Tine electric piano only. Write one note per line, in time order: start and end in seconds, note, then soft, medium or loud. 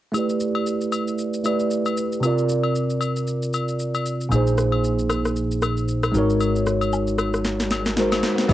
0.12 1.41 A3 medium
0.12 1.42 E4 medium
0.12 1.43 G4 medium
0.17 1.43 B4 medium
0.17 1.44 D5 medium
1.44 2.22 A3 medium
1.44 2.23 E4 soft
1.44 2.23 G4 soft
1.44 2.24 B4 soft
1.44 2.24 D5 medium
2.20 4.26 C3 medium
2.20 4.27 C4 medium
2.20 4.28 F4 medium
2.25 4.29 A#4 medium
2.25 4.30 D5 medium
4.29 6.09 A#2 medium
4.29 6.10 A#3 medium
4.29 6.11 D#4 medium
4.34 6.12 G#4 medium
4.34 6.13 C5 medium
6.12 7.92 G#3 medium
6.12 7.93 D#4 medium
6.12 7.94 F#4 medium
6.17 7.95 A#4 medium
6.17 7.95 C#5 medium
7.96 8.49 G#3 medium
7.96 8.49 D#4 medium
7.96 8.50 F#4 medium
7.96 8.50 A#4 medium
7.96 8.50 C5 medium
8.48 8.53 A3 medium
8.48 8.53 E4 medium
8.48 8.53 G4 medium